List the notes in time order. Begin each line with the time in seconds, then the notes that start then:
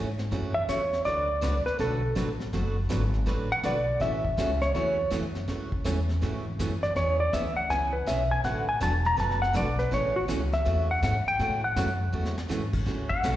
Already playing: G#2
0.18 snare
0.31 F#2 C#3 E3 A3 C#4 F#4, brush sweep, kick, snare
0.54 E5
0.68 E2 C#3 E3 A3 C#4 F#4 C#5, kick, snare, hi-hat pedal
0.93 snare
1.05 D2 D3 F#3 A3 D4 F#4 B4 D5, brush sweep, kick, snare
1.41 C#2 D3 F#3 A3 D4 F#4 B4, kick, snare, hi-hat pedal
1.66 B4, muted upright bass stroke, snare
1.79 B1 D3 F#3 A3 D4 F#4 A4 B4, brush sweep, kick, snare
2.15 A1 D3 F#3 A3 D4 F#4 B4, kick, snare, hi-hat pedal
2.40 snare
2.53 F#1 D3 F#3 A3 D4 F#4 B4, brush sweep, kick, snare
2.89 G#1 D3 F#3 A3 D4 F#4 B4, kick, snare, hi-hat pedal
3.14 snare
3.26 A1 D3 F#3 A3 D4 F#4 B4, brush sweep, kick, snare
3.52 F#5
3.63 B1 D3 F#3 A3 D4 F#4 B4 D5, kick, snare, hi-hat pedal
4.00 A1 C#3 E3 A3 C#4 F#4 E5, brush sweep, kick, snare
4.25 kick
4.37 C#2 C#3 E3 A3 C#4 F#4, kick, snare, hi-hat pedal
4.61 C#5, snare
4.74 E2 C#3 E3 A3 C#4 F#4 C#5, brush sweep, kick, snare
5.10 F#2 C#3 E3 A3 C#4 F#4, kick, snare, hi-hat pedal
5.35 snare
5.48 C#2 C#3 E3 A3 C#4 F#4, brush sweep, kick, snare
5.72 muted upright bass stroke, kick
5.84 E2 C#3 E3 A3 C#4 F#4, kick, snare, hi-hat pedal
6.09 snare
6.21 G#2 C#3 E3 A3 C#4 F#4, brush sweep, kick, snare
6.59 F#2 C#3 E3 A3 C#4 F#4, kick, snare, hi-hat pedal
6.83 D5, snare
6.96 E2 E3 B3 C#4 G#4 C#5, brush sweep, kick, snare
7.20 D5
7.33 D2 E3 B3 C#4 G#4 E5, kick, snare, hi-hat pedal
7.57 F#5
7.70 C#2 E3 B3 C#4 G#4 G#5, brush sweep, kick, snare
7.93 B4
8.06 B1 E3 B3 C#4 G#4 E5, kick, snare, hi-hat pedal
8.31 G#5
8.44 A1 D3 F#3 A3 D4 F#4 B4 F#5, brush sweep, kick, snare
8.69 G#5
8.80 E1 D3 F#3 A3 D4 F#4 B4 A5, kick, snare, hi-hat pedal
9.05 A#5, snare
9.17 F#1 D3 F#3 A3 D4 F#4 B4 A5, brush sweep, kick, snare
9.30 snare
9.42 F#5, snare
9.53 B1 D3 F#3 A3 D4 F#4 B4 D5, kick, snare, hi-hat pedal
9.79 B4, snare
9.91 A1 C#3 E3 A3 C#4 F#4 C#5, brush sweep, kick, snare
10.16 F#4
10.28 C#2 C#3 E3 A3 C#4 F#4, kick, snare, hi-hat pedal
10.52 E5, snare
10.65 E2 C#3 E3 A3 C#4 F#4, brush sweep, kick, snare
10.91 F#5
11.02 G#2 C#3 E3 A3 C#4 F#4 F#5, kick, snare, hi-hat pedal
11.26 G5, muted upright bass stroke
11.39 A2 C#3 E3 A3 C#4 F#4, brush sweep, kick, snare
11.64 F#5
11.76 F#2 C#3 E3 A3 C#4 F#4, kick, snare, hi-hat pedal
12.13 E2 C#3 E3 A3 C#4 F#4
12.25 snare
12.38 snare
12.49 G#2 C#3 E3 A3 C#4 F#4, snare, hi-hat pedal
12.73 kick, crash
12.86 C#2 C#3 E3 A3 C#4 F#4, kick, snare
13.09 F#5, muted upright bass stroke, kick
13.23 B1 C#3 E3 A3 C#4 F#4, kick, snare, hi-hat pedal, ride